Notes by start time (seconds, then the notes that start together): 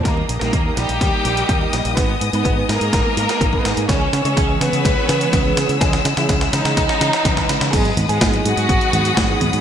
0.05 D#2 G3 A#3 D#4 G4 A#4 D#5 A#5 D#6, kick, snare, closed hi-hat
0.17 high conga
0.29 A#1, closed hi-hat
0.41 A#1 G3 A#3 D#4 A#4, snare, closed hi-hat
0.53 D#2, kick, closed hi-hat
0.77 A#1 G3 A#3 D#4 G4 A#4, snare, closed hi-hat
0.89 A#1, closed hi-hat
1.01 D#2, kick, snare, closed hi-hat
1.13 G3 A#3 D#4 A#4
1.25 A#1, closed hi-hat
1.37 G3 A#3 D#4 A#4, closed hi-hat
1.49 D#2, kick, closed hi-hat
1.61 G3 A#3 D#4 A#4, high conga
1.73 A#1, snare, closed hi-hat
1.85 A#1, closed hi-hat
1.97 G#1 G#3 B3 D#4 G#4 B4 G#5, kick, snare, closed hi-hat
2.09 high conga
2.21 G#2, closed hi-hat
2.33 G#2 G#3 B3 D#4 B4, closed hi-hat
2.45 G#1, kick, closed hi-hat
2.69 G#2 G#3 A#3 D#4 G#4 A#4, snare, closed hi-hat
2.81 G#2, closed hi-hat
2.93 G#1, kick, snare, closed hi-hat
3.05 G#3 B3 D#4 B4
3.17 G#2, closed hi-hat
3.29 G#3 B3 D#4, snare, closed hi-hat, high conga
3.41 G#1, kick, closed hi-hat
3.53 G#3 B3 D#4 B4, kick
3.65 G#2, snare, closed hi-hat
3.77 G#2, closed hi-hat
3.89 C#2 E3 G#3 C#4 G#4 C#5 C#6 E6, kick, snare, closed hi-hat
4.01 high conga
4.13 C#3, snare, closed hi-hat
4.25 C#3 E3 G#3 C#4 G#4 C#5, closed hi-hat
4.37 C#2, kick, snare, closed hi-hat
4.61 C#3 E3 G#3 B3 C#4 G#4 B4, snare, closed hi-hat
4.73 C#3, closed hi-hat
4.85 C#2, kick, snare, closed hi-hat
4.97 E3 G#3 C#4 G#4
5.09 C#3, snare, closed hi-hat
5.21 E3 G#3 C#4 G#4, closed hi-hat
5.33 C#2, kick, snare, closed hi-hat
5.45 E3 G#3 C#4 G#4, high conga
5.57 C#3, snare, closed hi-hat
5.69 C#3, closed hi-hat
5.81 C#2 E3 G#3 C#4 G#4 B5, kick, snare, closed hi-hat
5.93 snare, closed hi-hat, high conga
6.05 C#3, snare, closed hi-hat
6.17 C#3 E3 G#3 C#4 E4 G#4, snare, closed hi-hat
6.29 C#2, kick, snare, closed hi-hat
6.41 snare, closed hi-hat
6.53 C#3 E3 G#3 C#4 D#4 G#4, snare, closed hi-hat
6.65 C#3, snare, closed hi-hat
6.77 C#2, kick, snare, closed hi-hat
6.89 E3 G#3 C#4 G#4, snare
7.01 C#3, snare, closed hi-hat
7.13 snare, closed hi-hat, high conga
7.25 C#2 E3 G#3 C#4 B4, kick, snare, closed hi-hat
7.37 kick, snare
7.49 C#3, snare, closed hi-hat
7.61 C#3, snare, closed hi-hat
7.73 G#1 F#3 G#3 B3 D#4 G#4 F#5 B5 D#6, kick, closed hi-hat, crash
7.85 closed hi-hat
7.97 G#2, closed hi-hat, high conga
8.09 G#2 F#3 G#3 B3 D#4 G#4, closed hi-hat
8.21 G#1, kick, snare, closed hi-hat
8.34 closed hi-hat
8.45 G#2 F#3 B3 D#4 F#4 G#4, closed hi-hat
8.57 G#2, closed hi-hat
8.69 G#1, kick, closed hi-hat
8.81 F#3 B3 D#4 G#4, closed hi-hat
8.93 G#2, closed hi-hat, high conga
9.05 F#3 B3 D#4 G#4, closed hi-hat
9.17 G#1, kick, snare, closed hi-hat
9.29 F#3 B3 D#4 G#4
9.41 G#2, closed hi-hat, high conga
9.53 G#2, closed hi-hat